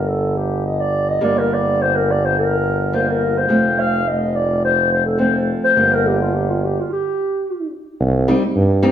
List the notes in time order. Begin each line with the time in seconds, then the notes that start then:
Already playing: G1 G3 A#3 D4
0.08 A4
0.37 G4
0.66 D#5
0.80 D5
1.09 D#5
1.21 G1 G3 A#3 D4 D5
1.38 A#4
1.54 D5
1.82 C5
1.96 A#4
2.11 D5
2.25 C5
2.38 A#4
2.93 G3 A#3 F4 C5
3.10 A#4
3.38 C5
3.48 F1 F3 A3 C4
3.79 F5
4.08 D#5
4.36 D5
4.64 C5
4.92 C5
5.06 A4
5.18 F3 A3 C4 C5
5.64 C5
5.76 G1 G3 A#3 D4
5.94 A#4
6.07 G4
6.21 F4
6.35 G4
6.50 F4
6.65 G4
6.80 F4
6.92 G4
8.00 C2
8.28 G3 C4 D#4
8.56 G2
8.82 G3 C4 D#4